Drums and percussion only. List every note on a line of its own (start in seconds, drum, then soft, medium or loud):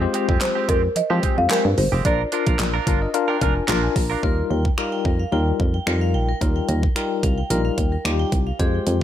0.14 closed hi-hat medium
0.29 kick medium
0.41 snare medium
0.41 clap loud
0.41 closed hi-hat loud
0.69 kick loud
0.69 closed hi-hat medium
0.96 closed hi-hat medium
1.23 kick medium
1.23 closed hi-hat medium
1.50 snare loud
1.50 clap loud
1.50 closed hi-hat medium
1.78 open hi-hat medium
2.05 kick loud
2.05 closed hi-hat medium
2.32 closed hi-hat medium
2.47 kick medium
2.47 closed hi-hat medium
2.59 snare loud
2.59 clap loud
2.59 closed hi-hat medium
2.87 kick loud
2.87 closed hi-hat medium
3.14 closed hi-hat medium
3.41 kick medium
3.41 closed hi-hat medium
3.68 snare loud
3.68 clap loud
3.68 closed hi-hat medium
3.96 kick medium
3.96 open hi-hat medium
4.23 kick loud
4.65 kick medium
4.78 finger snap loud
5.05 kick loud
5.60 kick medium
5.87 finger snap loud
6.41 kick loud
6.41 closed hi-hat medium
6.69 closed hi-hat medium
6.83 kick medium
6.96 finger snap loud
6.96 closed hi-hat medium
7.23 kick medium
7.23 closed hi-hat medium
7.50 closed hi-hat medium
7.78 kick medium
7.78 closed hi-hat medium
8.05 finger snap loud
8.05 closed hi-hat medium
8.32 kick medium
8.32 closed hi-hat medium
8.60 kick loud
8.60 closed hi-hat medium
8.87 closed hi-hat medium